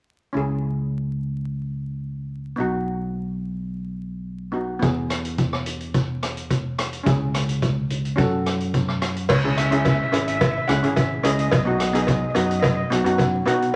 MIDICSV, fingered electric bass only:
0, 0, Header, 1, 2, 480
1, 0, Start_track
1, 0, Key_signature, 4, "minor"
1, 0, Tempo, 558140
1, 298, Time_signature, 4, 2, 24, 8
1, 11829, End_track
2, 0, Start_track
2, 0, Title_t, "Fingered electric bass"
2, 0, Program_c, 0, 33
2, 300, Note_on_c, 0, 37, 60
2, 2188, Note_off_c, 0, 37, 0
2, 2223, Note_on_c, 0, 35, 62
2, 4112, Note_off_c, 0, 35, 0
2, 4150, Note_on_c, 0, 40, 66
2, 6037, Note_off_c, 0, 40, 0
2, 6074, Note_on_c, 0, 37, 68
2, 7013, Note_off_c, 0, 37, 0
2, 7034, Note_on_c, 0, 42, 67
2, 7973, Note_off_c, 0, 42, 0
2, 7995, Note_on_c, 0, 37, 78
2, 8595, Note_off_c, 0, 37, 0
2, 8709, Note_on_c, 0, 32, 76
2, 9110, Note_off_c, 0, 32, 0
2, 9189, Note_on_c, 0, 37, 86
2, 9293, Note_off_c, 0, 37, 0
2, 9308, Note_on_c, 0, 32, 76
2, 9607, Note_off_c, 0, 32, 0
2, 9669, Note_on_c, 0, 37, 69
2, 9869, Note_off_c, 0, 37, 0
2, 9911, Note_on_c, 0, 35, 76
2, 10510, Note_off_c, 0, 35, 0
2, 10628, Note_on_c, 0, 42, 74
2, 11027, Note_off_c, 0, 42, 0
2, 11104, Note_on_c, 0, 35, 85
2, 11208, Note_off_c, 0, 35, 0
2, 11224, Note_on_c, 0, 42, 69
2, 11522, Note_off_c, 0, 42, 0
2, 11582, Note_on_c, 0, 47, 73
2, 11782, Note_off_c, 0, 47, 0
2, 11829, End_track
0, 0, End_of_file